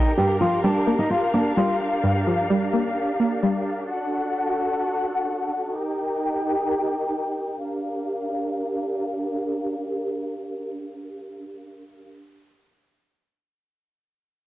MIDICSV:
0, 0, Header, 1, 4, 480
1, 0, Start_track
1, 0, Key_signature, -2, "minor"
1, 0, Tempo, 465116
1, 180, Time_signature, 4, 2, 24, 8
1, 14927, End_track
2, 0, Start_track
2, 0, Title_t, "String section"
2, 0, Program_c, 0, 48
2, 0, Note_on_c, 0, 63, 78
2, 0, Note_on_c, 0, 67, 72
2, 0, Note_on_c, 0, 70, 69
2, 0, Note_on_c, 0, 79, 85
2, 161, Note_off_c, 0, 63, 0
2, 161, Note_off_c, 0, 79, 0
2, 179, Note_on_c, 0, 77, 85
2, 180, Note_on_c, 0, 62, 77
2, 3978, Note_off_c, 0, 67, 0
2, 3979, Note_off_c, 0, 70, 0
2, 3981, Note_off_c, 0, 77, 0
2, 4020, Note_on_c, 0, 66, 72
2, 4020, Note_on_c, 0, 69, 72
2, 4020, Note_on_c, 0, 78, 86
2, 5899, Note_off_c, 0, 62, 0
2, 5921, Note_off_c, 0, 66, 0
2, 5921, Note_off_c, 0, 69, 0
2, 5921, Note_off_c, 0, 78, 0
2, 5939, Note_on_c, 0, 63, 74
2, 5939, Note_on_c, 0, 67, 71
2, 5939, Note_on_c, 0, 70, 68
2, 5939, Note_on_c, 0, 79, 82
2, 7840, Note_off_c, 0, 63, 0
2, 7840, Note_off_c, 0, 67, 0
2, 7840, Note_off_c, 0, 70, 0
2, 7840, Note_off_c, 0, 79, 0
2, 7860, Note_on_c, 0, 62, 74
2, 7860, Note_on_c, 0, 67, 69
2, 7860, Note_on_c, 0, 70, 69
2, 7860, Note_on_c, 0, 77, 84
2, 12484, Note_off_c, 0, 62, 0
2, 12484, Note_off_c, 0, 67, 0
2, 12484, Note_off_c, 0, 70, 0
2, 12484, Note_off_c, 0, 77, 0
2, 14927, End_track
3, 0, Start_track
3, 0, Title_t, "Steel-string acoustic guitar"
3, 0, Program_c, 1, 25
3, 0, Note_on_c, 1, 63, 74
3, 121, Note_off_c, 1, 63, 0
3, 181, Note_on_c, 1, 67, 75
3, 361, Note_off_c, 1, 67, 0
3, 420, Note_on_c, 1, 65, 82
3, 600, Note_off_c, 1, 65, 0
3, 661, Note_on_c, 1, 62, 82
3, 999, Note_off_c, 1, 62, 0
3, 1020, Note_on_c, 1, 63, 82
3, 1110, Note_off_c, 1, 63, 0
3, 1139, Note_on_c, 1, 65, 85
3, 1319, Note_off_c, 1, 65, 0
3, 1380, Note_on_c, 1, 62, 78
3, 1560, Note_off_c, 1, 62, 0
3, 1620, Note_on_c, 1, 65, 86
3, 1800, Note_off_c, 1, 65, 0
3, 14927, End_track
4, 0, Start_track
4, 0, Title_t, "Synth pluck"
4, 0, Program_c, 2, 84
4, 0, Note_on_c, 2, 58, 91
4, 0, Note_on_c, 2, 63, 78
4, 180, Note_off_c, 2, 58, 0
4, 180, Note_off_c, 2, 63, 0
4, 182, Note_on_c, 2, 43, 93
4, 421, Note_on_c, 2, 53, 77
4, 661, Note_on_c, 2, 55, 96
4, 899, Note_on_c, 2, 58, 87
4, 1369, Note_off_c, 2, 58, 0
4, 1381, Note_off_c, 2, 43, 0
4, 1381, Note_on_c, 2, 58, 85
4, 1608, Note_off_c, 2, 55, 0
4, 1621, Note_off_c, 2, 53, 0
4, 1621, Note_on_c, 2, 55, 86
4, 2101, Note_on_c, 2, 43, 97
4, 2340, Note_on_c, 2, 53, 71
4, 2569, Note_off_c, 2, 55, 0
4, 2580, Note_off_c, 2, 58, 0
4, 2582, Note_on_c, 2, 55, 94
4, 2820, Note_on_c, 2, 58, 84
4, 3288, Note_off_c, 2, 58, 0
4, 3301, Note_off_c, 2, 43, 0
4, 3301, Note_on_c, 2, 58, 83
4, 3527, Note_off_c, 2, 55, 0
4, 3540, Note_off_c, 2, 53, 0
4, 3540, Note_on_c, 2, 55, 85
4, 4020, Note_off_c, 2, 55, 0
4, 4020, Note_off_c, 2, 58, 0
4, 14927, End_track
0, 0, End_of_file